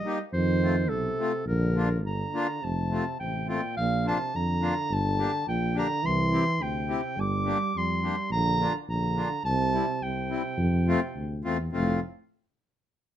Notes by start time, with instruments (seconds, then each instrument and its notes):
Already playing: euphonium G3, clarinet D#5
0.05 accordion A#3 D#4 G4
0.33 tuba F2, euphonium D#3, clarinet C5
0.63 accordion A3 C4 F4
0.89 tuba B1, euphonium C3, clarinet A4
1.19 accordion A3 C4 F4
1.46 tuba A#1, euphonium D3, clarinet A#4
1.76 accordion A#3 D4 F4
2.04 tuba G1, euphonium D3, clarinet A#5
2.34 accordion A#3 D4 F4
2.63 tuba F1, euphonium C3, clarinet A5
2.91 accordion A3 C4 F4
3.19 tuba A1, euphonium C3, clarinet G5
3.48 euphonium A#2, accordion A3 C4 F4, clarinet G5
3.77 tuba A#1, euphonium A#2, clarinet F5
4.05 accordion A#3 D4 F4, clarinet A5
4.09 euphonium C3
4.34 tuba F2, euphonium D3, clarinet A#5
4.61 accordion A#3 D4 F4
4.90 tuba G1, euphonium D3, clarinet A5
5.19 accordion A#3 D4 G4
5.47 tuba A#1, euphonium A#2, clarinet G5
5.75 euphonium D3, accordion A#3 D4 G4, clarinet A#5
6.02 tuba C2, euphonium E3, clarinet C6
6.32 accordion C4 E4 G4
6.59 tuba D2, euphonium C3, clarinet G5
6.88 accordion C4 E4 G4
7.16 tuba G1, euphonium G3, clarinet D6
7.45 accordion A#3 D4 G4
7.75 tuba F2, euphonium G3, clarinet C6
8.03 accordion A#3 D4 G4
8.30 tuba A#1, clarinet A#5
8.34 euphonium D3
8.60 accordion A#3 D4 F4
8.88 tuba A#1, euphonium D3, clarinet A#5
9.16 accordion A#3 D4 F4
9.44 tuba C2, euphonium C3, clarinet A5
9.73 accordion G3 C4 E4
10.01 tuba C2, euphonium C3, clarinet G5
10.30 accordion G3 C4 E4
10.57 tuba F2
10.87 accordion A3 C4 F4
11.15 tuba D2
11.44 tuba E2, accordion A3 C4 F4
11.72 tuba F1, euphonium A2, accordion A3 C4 F4, clarinet F5